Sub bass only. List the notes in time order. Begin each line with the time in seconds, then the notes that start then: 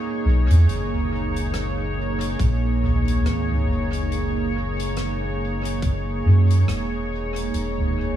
0.25 B1
0.50 E2
0.68 F#1
2.39 A#1
3.25 G#1
3.68 F#1
6.25 F#2
6.68 E1
7.54 E1